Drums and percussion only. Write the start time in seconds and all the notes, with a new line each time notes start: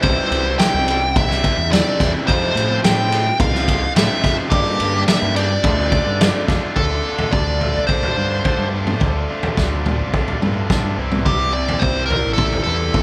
0.03 kick, ride
0.32 ride
0.59 snare, ride
0.88 ride
1.16 kick, ride
1.31 snare
1.44 kick, ride
1.73 snare, ride
2.00 kick, snare, ride
2.28 kick, ride
2.57 ride
2.84 snare, ride
3.12 ride
3.40 kick, ride
3.55 snare
3.68 kick, ride
3.96 snare, ride
4.24 kick, snare, ride
4.51 kick, ride
4.80 ride
5.08 snare, ride
5.36 ride
5.64 kick, ride
5.92 kick, ride
6.21 snare, ride
6.48 kick, snare, ride
6.76 kick, floor tom
7.18 floor tom
7.33 kick
7.61 floor tom
7.89 kick
8.03 floor tom
8.45 kick, floor tom
8.87 mid tom
9.00 kick, floor tom
9.43 floor tom
9.57 kick, snare
9.86 floor tom, mid tom
10.14 kick
10.28 floor tom
10.42 mid tom
10.70 kick, snare, floor tom, mid tom
11.12 mid tom
11.26 kick, floor tom
11.69 floor tom
11.82 kick
12.10 floor tom
12.38 kick
12.53 floor tom
12.94 kick, floor tom